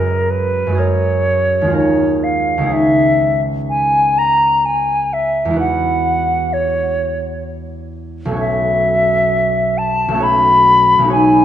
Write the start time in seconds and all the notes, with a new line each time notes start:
Already playing: F#2 G#3 F#4 G#4 A#4 C#5
0.30 B4
0.67 F#2 G#3
0.72 F#4 G#4
0.78 A#4 C#5
1.61 D#2 G#3
1.67 F4 G#4
1.73 A#4 C#5
2.23 F5
2.58 C#2 G#3
2.63 D#4 G#4
2.69 C#5 E5
3.69 G#5
4.18 A#5
4.65 G#5
5.13 E5
5.45 E2 G#3
5.51 E4 F#4
5.56 B4 F#5
6.53 C#5
8.25 B1 A3
8.31 C#4 F#4
8.37 C#5 E5
9.78 A5
10.08 B1 A3
10.14 C#4 F#4
10.20 C#5 B5
10.99 B1 G#3
11.04 D#4 F#4
11.10 C#5 G#5